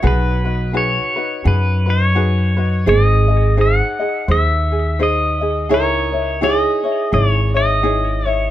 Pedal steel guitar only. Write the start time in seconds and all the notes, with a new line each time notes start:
0.07 B4
0.77 C#5
1.47 B4
1.90 C#5
2.89 D#5
3.61 F#5
4.32 E5
5.03 D#5
5.74 C#5
6.44 D#5
7.14 D5
7.31 C#5
7.57 D#5
8.28 C#5